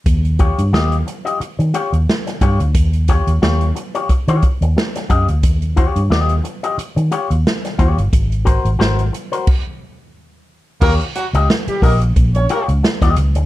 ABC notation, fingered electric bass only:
X:1
M:4/4
L:1/16
Q:"Swing 16ths" 1/4=89
K:Ebmix
V:1 name="Fingered electric bass" clef=bass
E,,3 G,, E,,2 z3 E, z E,, z2 G,, =D,, | E,,3 E,, E,,2 z3 E, z E,, z2 _G,, =D,, | E,,3 G,, E,,2 z3 E, z E,, z2 E,, G,,, | A,,,3 A,,, A,,,2 z8 z2 |
E,, z2 D,, z2 B,,,2 B,,,2 z D,, z E,, D,, =D,, |]